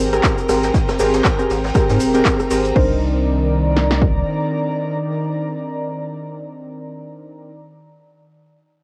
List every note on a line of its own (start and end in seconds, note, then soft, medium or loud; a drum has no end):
0.00 0.20 G#1 medium
0.00 2.76 C4 medium
0.00 2.76 A#4 medium
0.00 2.21 C5 medium
0.00 2.76 G5 medium
0.00 2.77 A#5 medium
0.12 0.38 C4 medium
0.12 0.38 G4 medium
0.12 0.38 G#4 medium
0.12 0.38 A#4 loud
0.12 cross-stick medium
0.12 closed hi-hat medium
0.12 ride medium
0.12 shaker soft
0.24 kick loud
0.24 snare loud
0.24 clap loud
0.24 closed hi-hat medium
0.24 shaker medium
0.38 shaker soft
0.49 0.70 G#1 loud
0.49 0.74 C4 medium
0.49 0.74 G4 medium
0.49 0.74 G#4 medium
0.49 0.74 A#4 medium
0.49 cross-stick medium
0.49 snare loud
0.49 open hi-hat loud
0.49 ride medium
0.49 shaker medium
0.63 snare loud
0.63 closed hi-hat medium
0.63 ride medium
0.63 shaker soft
0.74 kick loud
0.74 snare loud
0.74 closed hi-hat medium
0.74 ride medium
0.74 shaker soft
0.88 cross-stick medium
0.88 snare loud
0.88 ride medium
0.88 shaker soft
0.99 1.21 G#1 loud
0.99 1.24 C4 loud
0.99 1.24 G4 medium
0.99 1.25 G#4 medium
0.99 1.25 A#4 loud
0.99 snare loud
0.99 open hi-hat loud
0.99 ride medium
0.99 shaker loud
1.14 snare loud
1.14 closed hi-hat medium
1.14 ride medium
1.14 shaker soft
1.24 kick loud
1.24 snare loud
1.24 clap loud
1.24 closed hi-hat medium
1.24 shaker medium
1.39 1.53 C4 medium
1.39 1.53 G4 medium
1.39 1.53 G#4 medium
1.39 1.53 A#4 medium
1.39 shaker soft
1.49 1.71 G#1 loud
1.49 snare loud
1.49 open hi-hat loud
1.49 ride medium
1.49 shaker medium
1.64 snare loud
1.64 closed hi-hat medium
1.64 ride medium
1.64 shaker soft
1.75 2.11 C4 medium
1.75 2.11 G4 medium
1.75 2.11 G#4 medium
1.75 2.11 A#4 loud
1.75 kick loud
1.75 cross-stick medium
1.75 snare loud
1.75 closed hi-hat medium
1.75 shaker medium
1.89 1.98 G#2 medium
1.89 snare loud
1.89 open hi-hat medium
1.89 ride medium
1.89 shaker soft
2.00 2.22 D#1 loud
2.00 open hi-hat loud
2.00 shaker medium
2.14 2.40 C4 loud
2.14 2.40 G4 medium
2.14 2.40 G#4 medium
2.14 2.40 A#4 loud
2.14 closed hi-hat medium
2.14 ride medium
2.14 shaker soft
2.25 kick loud
2.25 snare loud
2.25 clap loud
2.25 closed hi-hat medium
2.25 shaker soft
2.40 cross-stick medium
2.40 shaker soft
2.50 2.72 G#1 medium
2.50 2.74 C4 medium
2.50 2.74 G4 medium
2.50 2.75 G#4 medium
2.50 2.75 A#4 loud
2.50 snare loud
2.50 open hi-hat loud
2.50 ride medium
2.50 shaker medium
2.65 closed hi-hat medium
2.65 ride soft
2.65 shaker soft
2.75 4.23 C2 loud
2.75 7.50 D#3 medium
2.75 7.50 C4 medium
2.75 7.50 D4 medium
2.75 7.51 D#4 medium
2.75 7.51 A#4 medium
2.75 7.50 C5 medium
2.75 kick loud
2.75 crash medium
2.84 7.55 D5 medium
2.92 7.55 A#5 medium
3.77 snare medium
3.91 snare medium
4.02 kick loud